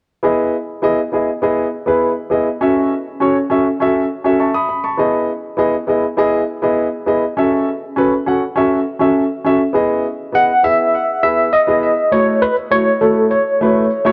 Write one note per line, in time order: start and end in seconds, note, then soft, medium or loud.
0.23 0.53 B3 medium
0.23 0.54 E4 medium
0.23 0.54 G#4 medium
0.23 0.54 D#5 medium
0.82 0.98 B3 medium
0.82 0.98 E4 medium
0.82 0.98 G#4 medium
0.82 0.98 D#5 medium
1.12 1.27 B3 medium
1.12 1.28 E4 medium
1.12 1.28 G#4 medium
1.12 1.28 D#5 medium
1.42 1.65 B3 medium
1.42 1.65 E4 medium
1.42 1.65 G#4 medium
1.42 1.66 D#5 medium
1.86 2.09 B3 medium
1.86 2.10 E4 medium
1.86 2.10 G#4 medium
1.86 2.10 B4 medium
2.30 2.46 B3 medium
2.30 2.46 E4 medium
2.30 2.46 G#4 medium
2.30 2.47 D#5 medium
2.61 2.91 C#4 medium
2.61 2.92 F#4 medium
2.61 2.92 A4 medium
2.61 2.92 E5 medium
3.20 3.36 C#4 medium
3.20 3.36 F#4 medium
3.20 3.36 A4 medium
3.20 3.36 C#5 medium
3.50 3.65 C#4 medium
3.50 3.66 F#4 medium
3.50 3.66 A4 medium
3.50 3.66 E5 medium
3.80 4.03 C#4 medium
3.80 4.03 F#4 medium
3.80 4.03 A4 medium
3.80 4.04 E5 medium
4.24 4.47 C#4 medium
4.24 4.47 F#4 medium
4.24 4.48 A4 medium
4.24 4.39 E5 medium
4.40 4.67 E5 medium
4.40 4.54 A5 medium
4.40 4.54 C#6 medium
4.54 4.67 B5 medium
4.54 4.83 D#6 medium
4.69 4.97 B5 medium
4.84 5.12 A5 medium
4.84 5.12 C#6 medium
4.97 5.29 B3 medium
4.97 5.29 E4 medium
4.97 5.29 G#4 medium
4.97 5.30 D#5 medium
5.57 5.73 B3 medium
5.57 5.73 E4 medium
5.57 5.74 G#4 medium
5.57 5.74 D#5 medium
5.87 6.03 B3 medium
5.87 6.03 E4 medium
5.87 6.03 G#4 medium
5.87 6.04 D#5 medium
6.17 6.40 B3 medium
6.17 6.40 E4 medium
6.17 6.41 G#4 medium
6.17 6.41 D#5 medium
6.62 6.85 B3 medium
6.62 6.85 E4 medium
6.62 6.86 G#4 medium
6.62 6.86 D#5 medium
7.06 7.22 B3 medium
7.06 7.22 E4 medium
7.06 7.22 G#4 medium
7.06 7.23 D#5 medium
7.37 7.67 C#4 medium
7.37 7.67 F#4 medium
7.37 7.68 A4 medium
7.37 7.68 E5 medium
7.96 8.11 C#4 medium
7.96 8.12 F#4 medium
7.96 8.12 A4 medium
7.96 8.12 B4 medium
8.26 8.41 C#4 medium
8.26 8.42 F#4 medium
8.26 8.42 A4 medium
8.26 8.42 F#5 medium
8.56 8.78 C#4 medium
8.56 8.79 F#4 medium
8.56 8.79 A4 medium
8.56 8.79 E5 medium
8.99 9.22 C#4 medium
8.99 9.23 F#4 medium
8.99 9.23 A4 medium
8.99 9.23 E5 medium
9.44 9.60 C#4 medium
9.44 9.60 F#4 medium
9.44 9.60 A4 medium
9.44 9.61 E5 medium
9.73 10.04 B3 medium
9.73 10.04 E4 medium
9.73 10.05 G#4 medium
9.73 10.05 D#5 medium
10.32 10.48 B3 medium
10.32 10.49 E4 medium
10.32 10.49 G#4 medium
10.32 10.49 D#5 medium
10.32 10.65 F#5 medium
10.63 10.94 B3 medium
10.63 10.94 E4 medium
10.63 10.94 G#4 medium
10.63 11.22 E5 medium
10.63 10.95 E5 medium
11.23 11.46 B3 medium
11.23 11.46 E4 medium
11.23 11.46 G#4 medium
11.23 11.46 B4 medium
11.23 11.54 E5 medium
11.53 12.14 D#5 medium
11.67 11.90 B3 medium
11.67 11.90 E4 medium
11.67 11.91 G#4 medium
11.67 11.91 D#5 medium
12.12 12.42 A3 medium
12.12 12.43 E4 medium
12.12 12.43 F#4 medium
12.12 12.43 C#5 medium
12.42 12.55 B4 medium
12.71 12.86 A3 medium
12.71 12.86 E4 medium
12.71 12.87 F#4 medium
12.71 13.02 C#5 medium
12.71 12.87 C#5 medium
13.01 13.31 A3 medium
13.01 13.32 E4 medium
13.01 13.32 F#4 medium
13.01 13.32 A4 medium
13.01 13.32 C#5 medium
13.31 14.12 C#5 medium
13.61 13.83 A3 medium
13.61 13.84 E4 medium
13.61 13.84 F#4 medium
13.61 13.84 B4 medium
14.05 14.12 A3 medium
14.05 14.12 E4 medium
14.05 14.12 F#4 medium
14.05 14.12 C#5 medium